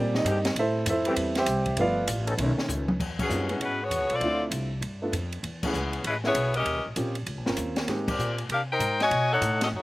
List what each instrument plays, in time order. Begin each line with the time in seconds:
Already playing: upright bass A#2, grand piano G3 A#3 C4 G4 D5 G5
0.15 grand piano D#4 D#5, snare
0.25 upright bass G2, trombone section D3 G#3 C4 G4, hi-hat pedal, ride
0.45 snare, ride
0.55 upright bass A2, grand piano E5, ride
0.59 grand piano E4 A4 C5
0.86 upright bass F2, grand piano E5, hi-hat pedal, ride
0.90 grand piano E4 A4 C5
1.05 trombone section E3 A3 C4 G4, grand piano G3 C4 B4, ride
1.16 upright bass E2, ride
1.35 grand piano G4 C5 E5 G5, snare, ride
1.46 upright bass C2, hi-hat pedal, ride
1.66 kick, ride
1.77 upright bass G1, grand piano F3 A3 B3, ride
1.81 grand piano F4 B4 D5 F5
2.07 upright bass A1, hi-hat pedal, ride
2.27 trombone section D#3 B3 C#4 A4, ride
2.37 upright bass B1, grand piano D#3 A3 C#4, ride
2.57 muted upright bass stroke, snare
2.68 upright bass C#2, hi-hat pedal
2.88 mid tom
2.99 upright bass E2, kick, crash
3.19 saxophone section F#3 B3 C#4 G#4, kick, crash
3.29 upright bass F#2, grand piano G3 A#3 C4 D#4 F4, hi-hat pedal
3.49 grand piano G#3 B3 C#4 E4 F#4, ride
3.60 upright bass G#2, saxophone section G#3 C#4 F#4 B4, ride
3.82 saxophone section B3 F#4 G#4 C#5
3.90 upright bass E2, hi-hat pedal, ride
4.00 upright bass C#2
4.10 upright bass B1, saxophone section C4 F4 A4 D5, ride
4.20 upright bass D2, grand piano A3 C4 D4 E4 F4, ride
4.51 upright bass C2, hi-hat pedal, ride
4.81 upright bass G2, ride
5.02 grand piano A3 B3 D4 F4 A4
5.12 upright bass F2, hi-hat pedal, ride
5.32 ride
5.43 upright bass E2, ride
5.63 saxophone section E3 B3 C#4 G#4, grand piano A3 B3 C#4 E4 G#4, kick, crash
5.74 upright bass C#2, hi-hat pedal
5.93 ride
6.04 upright bass A1, saxophone section G#3 C#4 E4 B4, ride
6.24 grand piano A3 B3 C#4 E4 G#4, saxophone section B3 E4 G#4 C#5, snare
6.35 upright bass B1, hi-hat pedal, ride
6.54 saxophone section C#4 G4 A#4 D#5, ride
6.65 upright bass D#2, ride
6.76 upright bass C#2
6.86 upright bass A#1
6.96 upright bass A#1, grand piano A#3 C4 C#4 F4 G4, hi-hat pedal, ride
7.15 ride
7.26 upright bass C#2, ride
7.37 upright bass A#1
7.46 upright bass G1, grand piano A#3 C4 C#4 F4 A#4, snare
7.57 upright bass D#2, hi-hat pedal, ride
7.76 snare, ride
7.88 upright bass G#2, grand piano G#3 A#3 C4 D#4 G4, snare, ride
8.08 saxophone section C4 G4 A#4 D5, kick, crash
8.19 upright bass A#2, hi-hat pedal
8.38 ride
8.49 upright bass C3, saxophone section D4 G4 A#4 F5, ride
8.71 saxophone section D#4 A#4 C5 G5
8.79 upright bass G#2, hi-hat pedal, ride
9.00 saxophone section F#4 C#5 D#5 G#5, snare, ride
9.11 upright bass B2, ride
9.33 saxophone section D#4 A4 C#5 F#5
9.41 upright bass A2, hi-hat pedal, ride
9.61 saxophone section C#4 F#4 A4 D#5, snare, ride
9.72 upright bass F#2, saxophone section A3 D#4 F#4 C#5